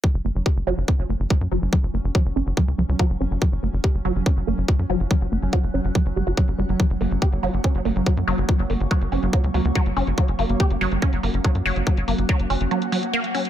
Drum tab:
HH |-x-x-x-x-x-x-x-x|-x-x-x-x-x-x-x-x|-x-x-x-x-x-x-x-x|-x-x-x-x-x-x-x-x|
BD |o---o---o---o---|o---o---o---o---|o---o---o---o---|o---o---o---o---|

HH |-xox-xox-xox-xox|xxoxxxoxxxoxxxox|xxoxxxoxxxoxxxox|xxoxxxoxxxoxxxox|
BD |o---o---o---o---|o---o---o---o---|o---o---o---o---|o---o-----------|